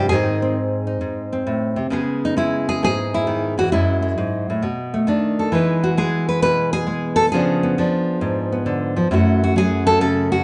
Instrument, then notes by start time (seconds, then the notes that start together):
nylon-string guitar
Already playing: G2 G#3
0.09 G#2 D#3 G#4
0.13 C4 D#4
0.42 C4
0.87 D#4
1.01 G#2
1.33 C4
1.47 A2
1.76 C3
1.90 C#3 G#3 B3 G#4
2.25 D#4
2.37 G#3 E4
2.69 G#4
2.83 G#2 G#4
3.14 E4
3.27 D#3
3.58 E3 F#4
3.72 F#2 F#3 G#3 E4
4.02 G#3
4.18 G#2
4.50 A2
4.62 B2
4.94 A3
5.07 D#3 D4
5.39 A4
5.52 E3 G#3 B3 D#4 B4
5.84 F#4
5.97 G#3 G#4
6.29 B4
6.42 B2 B4
6.73 G#4
6.87 G#3
7.16 A4
7.32 C#3 F3 B3 D4 G#4
7.63 B3
7.78 F3 D4
8.21 G#2
8.52 B3
8.66 D3
8.96 F3
9.11 F#2 F#3 A3 E4 F#4
9.44 F#4
9.56 F#3 G#4
9.87 A4
10.01 C#3 A4
10.32 F#4